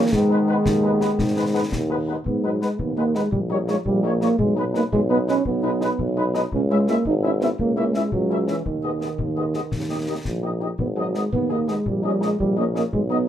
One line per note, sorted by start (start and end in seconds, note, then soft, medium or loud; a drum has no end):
0.00 0.12 D#3 medium
0.00 0.14 A#3 medium
0.13 0.57 G#2 medium
0.13 2.04 D#3 medium
0.13 1.72 G#3 medium
0.13 2.04 B3 medium
0.13 concert bass drum medium
0.13 snare medium
0.30 0.37 G#3 soft
0.30 0.37 B3 soft
0.30 0.37 D#4 soft
0.30 0.37 B4 medium
0.48 0.55 G#3 soft
0.48 0.55 B3 soft
0.48 0.55 D#4 soft
0.48 0.55 B4 medium
0.66 1.10 D#2 medium
0.66 concert bass drum medium
0.66 snare medium
0.84 0.90 G#3 medium
0.84 0.90 B3 soft
0.84 0.90 D#4 soft
0.84 0.91 B4 soft
1.01 1.08 G#3 soft
1.01 1.08 B3 soft
1.01 1.08 D#4 soft
1.01 1.08 B4 soft
1.01 snare medium
1.19 1.63 G#2 medium
1.19 concert bass drum medium
1.19 snare medium
1.36 1.43 G#3 soft
1.36 1.43 B3 soft
1.36 1.43 D#4 soft
1.36 1.43 B4 medium
1.54 1.61 G#3 soft
1.54 1.61 B3 soft
1.54 1.61 D#4 soft
1.54 1.60 B4 soft
1.72 2.17 D#2 medium
1.72 concert bass drum medium
1.72 snare medium
1.90 1.97 G#3 soft
1.90 1.97 B3 soft
1.90 1.97 D#4 soft
1.90 1.96 B4 soft
2.08 2.15 G#3 soft
2.08 2.15 B3 soft
2.08 2.15 D#4 soft
2.08 2.14 B4 soft
2.25 2.67 G#2 soft
2.25 2.46 B3 medium
2.25 concert bass drum medium
2.44 2.62 F#3 medium
2.44 2.50 G#3 soft
2.44 2.50 B3 soft
2.44 2.50 D#4 soft
2.44 2.50 B4 soft
2.61 2.81 G#3 medium
2.61 2.69 G#3 soft
2.61 2.68 B3 soft
2.61 2.68 D#4 soft
2.61 2.68 B4 soft
2.61 snare soft
2.79 3.24 D#2 medium
2.79 2.97 B3 medium
2.79 concert bass drum medium
2.97 3.04 G#3 soft
2.97 3.17 A#3 medium
2.97 3.04 B3 soft
2.97 3.04 D#4 soft
2.97 3.03 B4 soft
3.15 3.31 G#3 medium
3.15 3.22 G#3 soft
3.15 3.22 B3 soft
3.15 3.22 D#4 soft
3.15 3.21 B4 soft
3.15 snare soft
3.32 3.77 A#1 soft
3.32 3.40 G3 medium
3.32 concert bass drum medium
3.50 3.58 G3 medium
3.50 3.57 G3 soft
3.50 3.56 A#3 soft
3.50 3.57 D#4 soft
3.50 3.57 C#5 soft
3.68 3.75 G3 soft
3.68 3.76 G#3 medium
3.68 3.75 A#3 soft
3.68 3.75 D#4 soft
3.68 3.75 C#5 soft
3.68 snare soft
3.86 4.30 A#1 medium
3.86 4.05 G3 medium
3.86 concert bass drum medium
4.03 4.10 G3 soft
4.03 4.09 A#3 soft
4.03 4.21 A#3 medium
4.03 4.10 D#4 soft
4.03 4.11 C#5 soft
4.21 4.28 G3 soft
4.21 4.28 A#3 soft
4.21 4.38 A#3 medium
4.21 4.28 D#4 soft
4.21 4.29 C#5 soft
4.21 snare soft
4.39 4.84 B1 medium
4.39 4.55 G#3 medium
4.39 concert bass drum medium
4.56 4.63 G#3 soft
4.56 4.65 B3 medium
4.56 4.63 D#4 soft
4.56 4.64 B4 soft
4.74 4.80 G#3 soft
4.74 4.83 A#3 medium
4.74 4.80 D#4 medium
4.74 4.81 B4 soft
4.74 snare soft
4.92 5.37 B1 medium
4.92 5.00 G#3 medium
4.92 concert bass drum medium
5.10 5.16 G#3 soft
5.10 5.18 B3 medium
5.10 5.16 D#4 soft
5.10 5.16 B4 soft
5.28 5.34 G#3 medium
5.28 5.45 C#4 medium
5.28 5.34 D#4 medium
5.28 5.34 B4 soft
5.28 snare soft
5.45 5.90 B1 medium
5.45 6.31 B3 medium
5.45 concert bass drum medium
5.63 5.70 G#3 medium
5.63 5.70 D#4 medium
5.63 5.70 B4 soft
5.81 5.87 G#3 soft
5.81 5.88 D#4 medium
5.81 5.88 B4 medium
5.81 snare soft
5.99 6.44 B1 medium
5.99 concert bass drum medium
6.17 6.23 G#3 medium
6.17 6.23 D#4 medium
6.17 6.24 B4 soft
6.34 6.41 G#3 medium
6.34 6.41 D#4 medium
6.34 6.41 B4 soft
6.34 snare soft
6.52 6.97 C#2 medium
6.52 6.61 C#4 medium
6.52 concert bass drum medium
6.70 6.77 G#3 soft
6.70 6.88 G#3 medium
6.70 6.77 C#4 soft
6.70 6.77 E4 soft
6.70 6.76 E5 soft
6.87 6.94 G#3 soft
6.87 7.05 A#3 medium
6.87 6.94 C#4 soft
6.87 6.94 E4 soft
6.87 6.95 E5 medium
6.87 snare soft
7.05 7.51 G#1 medium
7.05 7.14 D#4 loud
7.05 concert bass drum medium
7.23 7.30 G#3 soft
7.23 7.30 C#4 soft
7.23 7.32 C#4 medium
7.23 7.30 E4 soft
7.23 7.30 E5 soft
7.41 7.48 G#3 soft
7.41 7.49 B3 medium
7.41 7.47 C#4 soft
7.41 7.48 E4 soft
7.41 7.48 E5 soft
7.41 snare soft
7.59 8.04 C#2 medium
7.59 7.76 A#3 medium
7.59 concert bass drum medium
7.77 7.95 A#3 medium
7.77 7.83 A#3 soft
7.77 7.83 C#4 soft
7.77 7.83 E4 soft
7.77 7.83 E5 soft
7.94 8.12 G#3 medium
7.94 8.01 A#3 soft
7.94 8.01 C#4 soft
7.94 8.01 E4 soft
7.94 8.01 E5 soft
7.94 snare soft
8.12 8.57 C#2 medium
8.12 8.49 F#3 medium
8.12 concert bass drum medium
8.30 8.37 A#3 soft
8.30 8.37 C#4 soft
8.30 8.37 E4 soft
8.30 8.37 E5 soft
8.48 8.65 E3 medium
8.48 8.54 A#3 soft
8.48 8.54 C#4 soft
8.48 8.55 E4 soft
8.48 8.55 E5 soft
8.48 snare soft
8.66 9.10 D#2 soft
8.66 10.58 D#3 medium
8.66 concert bass drum medium
8.83 8.90 G#3 soft
8.83 8.90 B3 soft
8.83 8.90 G#4 soft
8.83 8.90 D#5 soft
9.01 9.08 G#3 soft
9.01 9.08 B3 soft
9.01 9.08 G#4 soft
9.01 9.07 D#5 soft
9.01 snare soft
9.19 9.59 D#2 soft
9.19 concert bass drum medium
9.37 9.43 G#3 soft
9.37 9.44 B3 soft
9.37 9.44 G#4 soft
9.37 9.43 D#5 soft
9.54 9.61 G#3 soft
9.54 9.61 B3 soft
9.54 9.61 G#4 soft
9.54 9.61 D#5 soft
9.54 snare soft
9.72 10.17 D#2 soft
9.72 concert bass drum medium
9.72 snare soft
9.90 9.97 A#3 soft
9.90 9.97 D#4 soft
9.90 9.97 G4 soft
9.90 9.97 D#5 soft
10.07 10.14 A#3 soft
10.07 10.14 D#4 soft
10.07 10.14 G4 soft
10.07 10.14 D#5 soft
10.25 10.70 A#1 soft
10.25 concert bass drum medium
10.25 snare soft
10.43 10.50 A#3 soft
10.43 10.50 D#4 soft
10.43 10.50 G4 soft
10.43 10.50 D#5 soft
10.61 10.67 A#3 soft
10.61 10.67 D#4 soft
10.61 10.67 G4 soft
10.61 10.69 D#5 soft
10.79 11.24 G#1 soft
10.79 10.88 B3 medium
10.79 concert bass drum medium
10.96 11.17 F#3 medium
10.96 11.03 B3 soft
10.96 11.03 D#4 soft
10.96 11.03 G#4 soft
10.96 11.04 D#5 soft
11.15 11.32 G#3 medium
11.15 11.21 B3 soft
11.15 11.21 D#4 soft
11.15 11.21 G#4 soft
11.15 11.22 D#5 soft
11.15 snare soft
11.33 11.77 D#2 medium
11.33 11.53 B3 medium
11.33 concert bass drum medium
11.50 11.71 A#3 medium
11.50 11.56 B3 soft
11.50 11.56 D#4 soft
11.50 11.57 G#4 soft
11.50 11.58 D#5 soft
11.68 11.89 G#3 medium
11.68 11.74 B3 soft
11.68 11.74 D#4 soft
11.68 11.74 G#4 soft
11.68 11.75 D#5 soft
11.68 snare soft
11.86 12.31 A#1 soft
11.86 12.04 G3 medium
11.86 concert bass drum medium
12.03 12.23 G3 medium
12.03 12.10 A#3 soft
12.03 12.10 C#4 soft
12.03 12.10 D#4 soft
12.03 12.11 D#5 soft
12.21 12.39 G#3 medium
12.21 12.28 A#3 soft
12.21 12.28 C#4 soft
12.21 12.28 D#4 soft
12.21 12.28 D#5 soft
12.21 snare soft
12.39 12.84 A#1 medium
12.39 12.56 G3 medium
12.39 concert bass drum medium
12.57 12.63 A#3 soft
12.57 12.66 A#3 medium
12.57 12.63 C#4 soft
12.57 12.63 D#4 soft
12.57 12.63 D#5 soft
12.74 12.81 A#3 soft
12.74 12.84 A#3 medium
12.74 12.81 C#4 soft
12.74 12.81 D#4 soft
12.74 12.81 D#5 soft
12.74 snare soft
12.93 13.28 B1 medium
12.93 13.01 G#3 medium
12.93 concert bass drum medium
13.10 13.17 G#3 soft
13.10 13.17 B3 soft
13.10 13.27 B3 medium
13.10 13.17 D#4 soft
13.10 13.17 D#5 medium